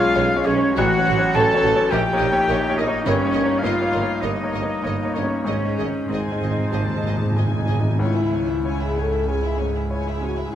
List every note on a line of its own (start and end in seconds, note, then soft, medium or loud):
0.00 0.80 B1 loud
0.00 0.16 G#3 medium
0.00 0.16 C#4 medium
0.00 0.46 F4 loud
0.00 0.16 C#5 medium
0.00 0.47 F5 loud
0.00 0.48 F5 loud
0.00 0.49 F5 loud
0.14 0.23 B1 medium
0.14 0.28 B1 medium
0.14 0.34 G#3 medium
0.14 0.34 C#4 medium
0.14 0.22 G#4 medium
0.14 0.22 C#5 medium
0.14 0.34 C#5 medium
0.14 0.25 C#5 medium
0.35 0.54 G#3 medium
0.35 0.55 C#4 medium
0.35 0.55 C#5 medium
0.44 0.54 B1 medium
0.44 0.59 B1 medium
0.44 0.77 C#4 loud
0.44 0.78 C#4 medium
0.44 0.54 G#4 medium
0.44 0.52 C#5 medium
0.44 0.77 C#5 loud
0.44 0.77 C#5 medium
0.44 0.55 C#5 medium
0.44 0.79 C#5 loud
0.56 0.75 G#3 medium
0.56 0.76 C#4 medium
0.56 0.75 C#5 medium
0.76 0.85 A1 medium
0.76 0.89 A1 loud
0.76 0.97 A1 loud
0.76 1.34 F#4 loud
0.76 0.85 F#4 medium
0.76 0.84 C#5 medium
0.76 0.85 C#5 medium
0.76 1.37 F#5 loud
0.76 1.36 F#5 loud
0.76 1.34 F#5 loud
0.98 1.15 F#3 medium
0.98 1.15 C#4 medium
0.98 1.15 C#5 medium
1.06 1.18 A1 medium
1.06 1.16 A1 medium
1.06 1.16 F#4 medium
1.06 1.14 C#5 medium
1.18 1.34 F#3 medium
1.18 1.34 C#4 medium
1.18 1.35 C#5 medium
1.34 1.43 A1 medium
1.34 1.47 A1 medium
1.34 1.53 F#3 medium
1.34 1.53 C#4 medium
1.34 1.43 F#4 medium
1.34 1.91 A4 loud
1.34 1.92 A4 medium
1.34 1.42 C#5 medium
1.34 1.43 C#5 medium
1.34 1.54 C#5 medium
1.34 1.92 A5 loud
1.34 1.93 A5 loud
1.34 1.92 A5 loud
1.54 1.71 F#3 medium
1.54 1.71 C#4 medium
1.54 1.72 C#5 medium
1.63 1.74 A1 medium
1.63 1.72 A1 medium
1.63 1.71 F#4 medium
1.63 1.73 C#5 medium
1.76 1.91 F#3 medium
1.76 1.91 C#4 medium
1.76 1.92 C#5 medium
1.90 2.02 A#1 medium
1.90 2.00 A#1 medium
1.90 2.10 A#1 loud
1.90 2.78 G4 loud
1.90 1.98 A#4 medium
1.90 1.99 C#5 medium
1.90 2.00 D#5 medium
1.90 2.76 G5 loud
1.90 2.78 G5 loud
1.90 2.76 G5 loud
2.13 2.29 A#3 medium
2.13 2.29 D#4 medium
2.13 2.29 C#5 medium
2.18 2.30 A#1 medium
2.18 2.28 A#1 medium
2.18 2.27 A#4 medium
2.18 2.28 C#5 medium
2.18 2.26 D#5 medium
2.31 2.48 A#3 medium
2.31 2.48 D#4 medium
2.31 2.49 C#5 medium
2.48 2.56 A#1 medium
2.48 2.60 A#1 medium
2.48 2.67 A#3 medium
2.48 2.56 A#4 medium
2.48 2.56 C#5 medium
2.48 2.57 D#5 medium
2.52 2.68 D#4 medium
2.52 2.68 C#5 medium
2.69 2.86 A#3 medium
2.69 2.86 D#4 medium
2.69 2.86 C#5 medium
2.76 2.84 A#1 medium
2.76 2.89 A#1 medium
2.76 3.06 D#4 loud
2.76 3.06 D#4 medium
2.76 2.85 A#4 medium
2.76 2.85 C#5 medium
2.76 3.10 D#5 medium
2.76 3.07 D#5 medium
2.76 3.06 D#5 loud
2.76 2.87 D#5 medium
2.88 3.05 A#3 medium
2.88 3.05 D#4 medium
2.88 3.05 C#5 medium
3.03 3.13 G1 medium
3.03 3.17 G1 loud
3.03 3.24 G2 loud
3.03 3.62 C#4 medium
3.03 3.62 C#4 loud
3.03 3.15 A#4 medium
3.03 3.60 C#5 loud
3.03 3.14 C#5 medium
3.03 3.61 C#5 medium
3.03 3.14 D#5 medium
3.08 3.65 C#5 medium
3.24 3.41 A#3 medium
3.24 3.42 D#4 medium
3.24 3.42 C#5 medium
3.31 3.43 G1 medium
3.31 3.46 G1 medium
3.31 3.39 C#5 medium
3.31 3.42 D#5 medium
3.36 3.44 A#4 medium
3.43 3.61 A#3 medium
3.43 3.61 D#4 medium
3.43 3.62 C#5 medium
3.59 3.80 D#4 medium
3.59 4.22 F4 medium
3.59 3.71 A#4 medium
3.59 3.71 C#5 medium
3.59 4.23 F5 loud
3.59 4.20 F5 medium
3.63 3.75 G1 medium
3.63 3.71 G1 medium
3.63 3.79 A#3 medium
3.63 4.23 F4 loud
3.63 3.80 C#5 medium
3.63 3.73 D#5 medium
3.63 4.23 F5 loud
3.81 3.99 A#3 medium
3.81 4.00 D#4 medium
3.81 4.00 C#5 medium
3.92 4.01 G1 medium
3.92 4.05 G1 medium
3.92 4.00 A#4 medium
3.92 4.00 C#5 medium
3.92 4.01 D#5 medium
4.00 4.20 A#3 medium
4.00 4.20 D#4 medium
4.00 4.21 C#5 medium
4.21 4.31 G1 medium
4.21 4.36 G1 medium
4.21 4.42 G2 medium
4.21 5.15 D#4 medium
4.21 5.14 D#4 medium
4.21 4.31 A#4 medium
4.21 4.30 C#5 medium
4.21 5.13 D#5 medium
4.21 5.15 D#5 medium
4.21 5.14 D#5 medium
4.21 4.31 D#5 medium
4.43 4.61 A#3 medium
4.43 4.62 D#4 medium
4.43 4.61 C#5 medium
4.52 4.66 G1 medium
4.52 4.62 G1 medium
4.52 4.62 A#4 medium
4.52 4.60 C#5 medium
4.52 4.63 D#5 medium
4.62 4.81 A#3 medium
4.62 4.81 D#4 medium
4.62 4.82 C#5 medium
4.83 4.97 G1 medium
4.83 4.93 G1 medium
4.83 5.02 A#3 medium
4.83 5.02 D#4 medium
4.83 4.93 A#4 medium
4.83 4.91 C#5 medium
4.83 5.02 C#5 medium
4.87 4.95 D#5 medium
5.03 5.22 A#3 medium
5.03 5.22 D#4 medium
5.03 5.23 C#5 medium
5.13 5.28 G1 medium
5.13 5.24 G1 medium
5.13 5.45 C#4 medium
5.13 5.44 C#4 medium
5.13 5.24 A#4 medium
5.13 5.45 C#5 medium
5.13 5.43 C#5 medium
5.13 5.46 C#5 medium
5.13 5.23 C#5 medium
5.13 5.24 D#5 medium
5.23 5.43 A#3 medium
5.23 5.44 D#4 medium
5.23 5.44 C#5 medium
5.43 5.59 G#1 medium
5.43 5.66 G#2 medium
5.43 5.54 G#2 soft
5.43 6.08 C#4 medium
5.43 6.08 C#4 loud
5.43 5.55 G#4 medium
5.43 5.85 C#5 medium
5.43 5.87 C#5 medium
5.43 5.55 D#5 medium
5.47 5.56 G#1 medium
5.47 5.88 C#5 medium
5.47 5.55 D#5 medium
5.56 5.61 G#2 soft
5.62 5.68 G#2 soft
5.62 5.83 G#3 soft
5.62 5.84 D#4 medium
5.62 5.84 D#5 medium
5.69 5.76 G#2 soft
5.78 5.90 G#1 medium
5.78 5.87 G#1 medium
5.78 5.86 G#4 medium
5.78 5.87 D#5 medium
5.78 5.88 D#5 medium
5.84 5.91 G#2 soft
5.84 6.05 G#3 soft
5.84 6.06 D#4 medium
5.84 6.06 D#5 medium
5.92 5.98 G#2 soft
6.06 6.12 G#2 soft
6.06 6.28 G#3 medium
6.06 7.69 C4 medium
6.06 6.29 D#4 medium
6.06 6.17 G#4 medium
6.06 7.63 C5 medium
6.06 7.64 C5 medium
6.06 7.65 C5 medium
6.06 6.29 D#5 medium
6.10 6.23 G#1 medium
6.10 6.19 G#1 medium
6.10 6.20 G#2 soft
6.10 6.21 D#5 medium
6.10 6.70 G#5 medium
6.21 6.26 G#2 soft
6.27 6.34 G#2 medium
6.27 6.49 G#3 soft
6.32 6.41 G#2 medium
6.32 6.49 D#4 medium
6.32 6.49 D#5 medium
6.40 6.53 G#1 medium
6.40 6.50 G#1 medium
6.40 6.48 G#2 medium
6.40 6.49 G#4 soft
6.40 6.51 D#5 soft
6.49 6.56 G#2 medium
6.49 6.70 G#3 medium
6.49 6.70 D#4 medium
6.49 6.70 D#5 medium
6.57 6.64 G#2 medium
6.65 6.71 G#2 medium
6.71 6.86 G#1 medium
6.71 6.81 G#1 medium
6.71 6.94 D#2 medium
6.71 6.78 G#2 medium
6.71 6.79 G#4 medium
6.71 6.81 D#5 medium
6.71 7.38 A5 medium
6.79 6.86 G#2 medium
6.87 6.94 G#2 medium
6.96 7.02 G#2 medium
6.96 7.14 G#3 medium
6.96 7.15 D#4 soft
6.96 7.16 D#5 medium
7.03 7.18 G#1 medium
7.03 7.14 G#1 soft
7.03 7.09 G#2 medium
7.03 7.13 G#4 medium
7.08 7.16 G#2 medium
7.08 7.16 D#5 medium
7.16 7.23 G#2 medium
7.16 7.35 G#3 medium
7.16 7.36 D#4 medium
7.16 7.36 D#5 medium
7.24 7.31 G#2 medium
7.32 7.48 G#1 medium
7.32 7.39 G#2 medium
7.36 7.46 G#1 medium
7.36 7.46 G#2 medium
7.36 7.55 G#3 medium
7.36 7.56 D#4 soft
7.36 7.45 G#4 medium
7.36 7.56 D#5 soft
7.36 7.47 D#5 soft
7.36 8.00 G#5 medium
7.47 7.53 G#2 loud
7.54 7.60 G#2 medium
7.54 7.77 G#3 medium
7.54 7.77 D#4 medium
7.59 7.68 G#2 medium
7.59 7.77 D#5 medium
7.66 7.80 G#1 medium
7.66 7.78 G#1 medium
7.66 7.74 G#2 medium
7.66 7.77 G#4 medium
7.66 7.76 D#5 medium
7.75 7.81 G#2 loud
7.75 7.98 G#3 medium
7.79 7.89 G#2 loud
7.79 7.99 D#4 soft
7.79 7.99 D#5 medium
7.90 7.97 G#2 loud
7.99 9.23 C#2 medium
7.99 10.49 C#2 medium
7.99 10.50 C#2 medium
7.99 8.17 C#4 medium
7.99 8.78 E4 medium
7.99 8.15 C#5 medium
7.99 8.16 G#5 soft
8.16 8.34 E4 medium
8.16 8.33 G#4 soft
8.16 8.33 E5 soft
8.32 8.84 G#2 soft
8.32 8.50 C#4 soft
8.32 8.49 C#5 medium
8.32 8.49 G#5 soft
8.48 8.65 E4 soft
8.48 8.65 G#4 soft
8.48 8.65 E5 soft
8.64 8.80 C#4 soft
8.64 8.94 E4 medium
8.64 8.79 C#5 soft
8.64 8.93 C#5 medium
8.64 8.80 G#5 medium
8.79 8.97 E4 medium
8.79 8.96 G#4 soft
8.79 8.97 E5 medium
8.83 8.97 G#4 medium
8.96 9.47 G#3 soft
8.96 9.13 C#4 soft
8.96 9.12 C#5 medium
8.96 9.12 G#5 soft
9.00 9.29 A4 medium
9.12 9.28 E4 soft
9.12 9.28 G#4 soft
9.12 9.28 E5 medium
9.27 10.49 C#2 medium
9.27 9.42 C#4 medium
9.27 10.22 G#4 medium
9.27 9.42 C#5 soft
9.27 9.43 G#5 medium
9.42 9.59 E4 medium
9.42 9.59 G#4 soft
9.42 9.60 E5 soft
9.58 10.11 G#2 medium
9.58 9.75 C#4 medium
9.58 9.75 C#5 medium
9.58 9.75 G#5 soft
9.75 9.91 E4 soft
9.75 9.92 G#4 soft
9.75 9.91 E5 soft
9.90 10.05 C#4 soft
9.90 10.19 E4 soft
9.90 10.19 C#5 soft
9.90 10.06 G#5 medium
9.94 10.07 C#5 medium
10.06 10.22 E4 soft
10.06 10.24 G#4 medium
10.06 10.23 E5 medium
10.21 10.53 G#3 medium
10.21 10.37 C#4 medium
10.21 10.53 F#4 medium
10.21 10.39 C#5 soft
10.21 10.39 G#5 medium
10.37 10.53 E4 soft
10.37 10.54 G#4 soft
10.37 10.53 E5 medium
10.50 10.55 E4 medium